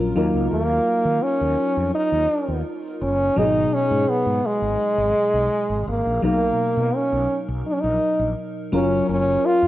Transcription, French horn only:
0, 0, Header, 1, 2, 480
1, 0, Start_track
1, 0, Tempo, 714286
1, 348, Time_signature, 4, 2, 24, 8
1, 6502, End_track
2, 0, Start_track
2, 0, Title_t, "French horn"
2, 0, Program_c, 0, 60
2, 108, Note_on_c, 0, 58, 79
2, 331, Note_off_c, 0, 58, 0
2, 346, Note_on_c, 0, 58, 92
2, 825, Note_on_c, 0, 61, 103
2, 835, Note_off_c, 0, 58, 0
2, 1304, Note_off_c, 0, 61, 0
2, 1308, Note_on_c, 0, 63, 110
2, 1761, Note_off_c, 0, 63, 0
2, 2032, Note_on_c, 0, 61, 94
2, 2273, Note_on_c, 0, 63, 108
2, 2283, Note_off_c, 0, 61, 0
2, 2513, Note_on_c, 0, 61, 97
2, 2523, Note_off_c, 0, 63, 0
2, 2754, Note_on_c, 0, 59, 101
2, 2764, Note_off_c, 0, 61, 0
2, 2997, Note_on_c, 0, 56, 106
2, 3007, Note_off_c, 0, 59, 0
2, 3953, Note_off_c, 0, 56, 0
2, 3955, Note_on_c, 0, 58, 83
2, 4175, Note_off_c, 0, 58, 0
2, 4198, Note_on_c, 0, 58, 91
2, 4674, Note_on_c, 0, 61, 93
2, 4684, Note_off_c, 0, 58, 0
2, 4970, Note_off_c, 0, 61, 0
2, 5152, Note_on_c, 0, 63, 89
2, 5194, Note_on_c, 0, 61, 73
2, 5204, Note_off_c, 0, 63, 0
2, 5246, Note_on_c, 0, 63, 91
2, 5256, Note_off_c, 0, 61, 0
2, 5630, Note_off_c, 0, 63, 0
2, 5875, Note_on_c, 0, 61, 85
2, 6095, Note_off_c, 0, 61, 0
2, 6112, Note_on_c, 0, 61, 96
2, 6355, Note_on_c, 0, 65, 105
2, 6365, Note_off_c, 0, 61, 0
2, 6502, Note_off_c, 0, 65, 0
2, 6502, End_track
0, 0, End_of_file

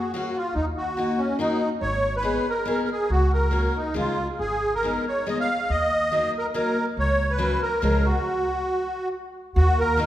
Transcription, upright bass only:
0, 0, Header, 1, 2, 480
1, 0, Start_track
1, 0, Key_signature, 6, "major"
1, 0, Tempo, 420757
1, 637, Time_signature, 3, 2, 24, 8
1, 3041, Tempo, 430108
1, 11293, End_track
2, 0, Start_track
2, 0, Title_t, "Upright bass"
2, 0, Program_c, 0, 32
2, 634, Note_on_c, 0, 39, 74
2, 1255, Note_off_c, 0, 39, 0
2, 2068, Note_on_c, 0, 32, 79
2, 2698, Note_off_c, 0, 32, 0
2, 3523, Note_on_c, 0, 37, 75
2, 4149, Note_off_c, 0, 37, 0
2, 4481, Note_on_c, 0, 37, 69
2, 4800, Note_off_c, 0, 37, 0
2, 4967, Note_on_c, 0, 32, 64
2, 5597, Note_off_c, 0, 32, 0
2, 6424, Note_on_c, 0, 39, 75
2, 7041, Note_off_c, 0, 39, 0
2, 7845, Note_on_c, 0, 37, 72
2, 8467, Note_off_c, 0, 37, 0
2, 8802, Note_on_c, 0, 37, 87
2, 9116, Note_off_c, 0, 37, 0
2, 10736, Note_on_c, 0, 39, 101
2, 11293, Note_off_c, 0, 39, 0
2, 11293, End_track
0, 0, End_of_file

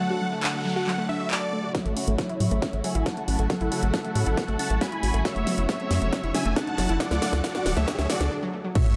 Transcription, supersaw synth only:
0, 0, Header, 1, 2, 480
1, 0, Start_track
1, 0, Time_signature, 4, 2, 24, 8
1, 0, Key_signature, 3, "major"
1, 0, Tempo, 437956
1, 9823, End_track
2, 0, Start_track
2, 0, Title_t, "Supersaw synth"
2, 0, Program_c, 0, 81
2, 0, Note_on_c, 0, 78, 103
2, 415, Note_off_c, 0, 78, 0
2, 474, Note_on_c, 0, 78, 89
2, 790, Note_off_c, 0, 78, 0
2, 834, Note_on_c, 0, 78, 91
2, 1150, Note_off_c, 0, 78, 0
2, 1194, Note_on_c, 0, 76, 94
2, 1405, Note_off_c, 0, 76, 0
2, 1434, Note_on_c, 0, 74, 91
2, 1855, Note_off_c, 0, 74, 0
2, 1915, Note_on_c, 0, 73, 76
2, 1915, Note_on_c, 0, 76, 97
2, 2336, Note_off_c, 0, 73, 0
2, 2336, Note_off_c, 0, 76, 0
2, 2394, Note_on_c, 0, 73, 74
2, 2394, Note_on_c, 0, 76, 91
2, 2710, Note_off_c, 0, 73, 0
2, 2710, Note_off_c, 0, 76, 0
2, 2754, Note_on_c, 0, 73, 78
2, 2754, Note_on_c, 0, 76, 98
2, 3070, Note_off_c, 0, 73, 0
2, 3070, Note_off_c, 0, 76, 0
2, 3115, Note_on_c, 0, 76, 74
2, 3115, Note_on_c, 0, 80, 92
2, 3325, Note_off_c, 0, 80, 0
2, 3326, Note_off_c, 0, 76, 0
2, 3355, Note_on_c, 0, 78, 76
2, 3355, Note_on_c, 0, 81, 92
2, 3776, Note_off_c, 0, 78, 0
2, 3776, Note_off_c, 0, 81, 0
2, 3835, Note_on_c, 0, 69, 79
2, 3835, Note_on_c, 0, 78, 100
2, 4256, Note_off_c, 0, 69, 0
2, 4256, Note_off_c, 0, 78, 0
2, 4314, Note_on_c, 0, 69, 77
2, 4314, Note_on_c, 0, 78, 93
2, 4630, Note_off_c, 0, 69, 0
2, 4630, Note_off_c, 0, 78, 0
2, 4675, Note_on_c, 0, 69, 75
2, 4675, Note_on_c, 0, 78, 95
2, 4991, Note_off_c, 0, 69, 0
2, 4991, Note_off_c, 0, 78, 0
2, 5034, Note_on_c, 0, 78, 77
2, 5034, Note_on_c, 0, 81, 91
2, 5245, Note_off_c, 0, 78, 0
2, 5245, Note_off_c, 0, 81, 0
2, 5274, Note_on_c, 0, 80, 79
2, 5274, Note_on_c, 0, 83, 96
2, 5695, Note_off_c, 0, 80, 0
2, 5695, Note_off_c, 0, 83, 0
2, 5753, Note_on_c, 0, 73, 77
2, 5754, Note_on_c, 0, 76, 104
2, 6175, Note_off_c, 0, 73, 0
2, 6175, Note_off_c, 0, 76, 0
2, 6233, Note_on_c, 0, 73, 72
2, 6234, Note_on_c, 0, 76, 91
2, 6550, Note_off_c, 0, 73, 0
2, 6550, Note_off_c, 0, 76, 0
2, 6594, Note_on_c, 0, 73, 76
2, 6594, Note_on_c, 0, 76, 97
2, 6910, Note_off_c, 0, 73, 0
2, 6910, Note_off_c, 0, 76, 0
2, 6954, Note_on_c, 0, 76, 77
2, 6954, Note_on_c, 0, 80, 93
2, 7165, Note_off_c, 0, 76, 0
2, 7165, Note_off_c, 0, 80, 0
2, 7193, Note_on_c, 0, 81, 95
2, 7194, Note_on_c, 0, 78, 75
2, 7615, Note_off_c, 0, 78, 0
2, 7615, Note_off_c, 0, 81, 0
2, 7674, Note_on_c, 0, 78, 97
2, 7675, Note_on_c, 0, 74, 81
2, 8096, Note_off_c, 0, 74, 0
2, 8096, Note_off_c, 0, 78, 0
2, 8154, Note_on_c, 0, 74, 77
2, 8155, Note_on_c, 0, 78, 90
2, 8470, Note_off_c, 0, 74, 0
2, 8471, Note_off_c, 0, 78, 0
2, 8515, Note_on_c, 0, 73, 79
2, 8515, Note_on_c, 0, 76, 101
2, 8831, Note_off_c, 0, 73, 0
2, 8831, Note_off_c, 0, 76, 0
2, 8875, Note_on_c, 0, 66, 81
2, 8875, Note_on_c, 0, 74, 93
2, 9085, Note_off_c, 0, 66, 0
2, 9085, Note_off_c, 0, 74, 0
2, 9594, Note_on_c, 0, 73, 79
2, 9594, Note_on_c, 0, 76, 98
2, 9823, Note_off_c, 0, 73, 0
2, 9823, Note_off_c, 0, 76, 0
2, 9823, End_track
0, 0, End_of_file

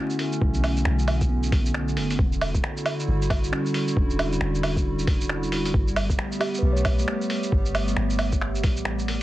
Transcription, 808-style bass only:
0, 0, Header, 1, 2, 480
1, 0, Start_track
1, 0, Tempo, 444444
1, 444, Time_signature, 4, 2, 24, 8
1, 9967, End_track
2, 0, Start_track
2, 0, Title_t, "808-style bass"
2, 0, Program_c, 0, 38
2, 451, Note_on_c, 0, 35, 100
2, 915, Note_off_c, 0, 35, 0
2, 927, Note_on_c, 0, 35, 92
2, 2123, Note_on_c, 0, 30, 87
2, 2139, Note_off_c, 0, 35, 0
2, 2348, Note_off_c, 0, 30, 0
2, 2363, Note_on_c, 0, 28, 104
2, 2831, Note_off_c, 0, 28, 0
2, 3325, Note_on_c, 0, 31, 95
2, 3793, Note_off_c, 0, 31, 0
2, 4282, Note_on_c, 0, 28, 104
2, 4751, Note_off_c, 0, 28, 0
2, 4762, Note_on_c, 0, 28, 89
2, 6191, Note_off_c, 0, 28, 0
2, 6199, Note_on_c, 0, 31, 104
2, 6669, Note_off_c, 0, 31, 0
2, 7151, Note_on_c, 0, 35, 98
2, 7626, Note_off_c, 0, 35, 0
2, 8124, Note_on_c, 0, 31, 103
2, 8592, Note_off_c, 0, 31, 0
2, 8604, Note_on_c, 0, 31, 91
2, 9327, Note_on_c, 0, 33, 92
2, 9344, Note_off_c, 0, 31, 0
2, 9967, Note_off_c, 0, 33, 0
2, 9967, End_track
0, 0, End_of_file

